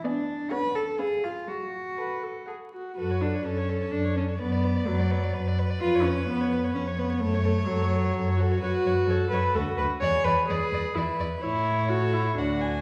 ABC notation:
X:1
M:3/4
L:1/16
Q:1/4=127
K:F#m
V:1 name="Violin"
d3 z c3 z B3 z | z4 A3 z A3 z | A c A c A c A c A c A c | B d B d B d B d B d B d |
B c B c B c B c B c B c | A c A c A c A c A c A c | [K:A] c2 c2 c2 c2 B2 B2 | d2 d2 d2 d2 d2 d2 |
c8 f2 g2 |]
V:2 name="Violin"
g4 f4 ^e4 | z4 f4 f4 | B4 A8 | d8 B4- |
B8 c4- | c12 | [K:A] B4 A4 F4 | G4 B4 B4 |
c4 A4 F4 |]
V:3 name="Viola"
B,4 C4 C4 | F,4 B2 A2 G2 F2 | F2 D2 C4 D2 C2 | B,4 F,6 z2 |
^E2 C2 B,4 C2 B,2 | A,4 F,6 F2 | [K:A] F6 B2 A2 B2 | c2 B2 G4 E2 z2 |
E4 F2 E2 D4 |]
V:4 name="Cello" clef=bass
D4 B2 A2 G2 ^E2 | F8 z4 | F,,4 F,,4 F,,4 | F,,4 F,,4 F,,4 |
^E,,4 E,,4 E,,4 | F,,4 F,,4 F,,4 | [K:A] F,,2 F,,2 F,,2 F,,2 D,,2 D,,2 | E,,2 E,,2 E,,2 E,,2 E,,2 E,,2 |
A,,8 D,,4 |]